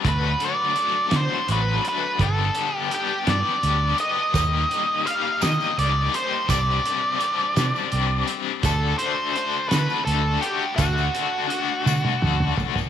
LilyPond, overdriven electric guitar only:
\new Staff \with { instrumentName = "Overdriven electric guitar" } { \time 6/8 \key d \dorian \tempo 4. = 56 <d fis a d' fis'>8 <a d' fis'>8 <fis a d' fis'>8 <a d' fis'>8 <fis a d' fis'>8 <a d' fis'>8 | <g, d g b d' g'>8 <g b d' g'>8 <g b d' g'>8 <g b d' g'>8 <g b d' g'>8 <g b d' g'>8 | <ees g bes ees' g'>8 <bes ees' g'>8 <g bes ees' g'>8 <bes ees' g'>8 <g bes ees' g'>8 <bes ees' g'>8 | <c g c' d' g'>8 <c' d' g'>8 <g c' d' g'>8 <c' d' g'>8 <g c' d' g'>8 <c' d' g'>8 |
<d a d' fis'>8 <a d' fis'>8 <d a d' fis'>8 <a d' fis'>8 <d a d' fis'>8 <a d' fis'>8 | <d a d' fis'>8 <a d' fis'>8 <d a d' fis'>8 <a d' fis'>8 <d a d' fis'>8 <a d' fis'>8 | }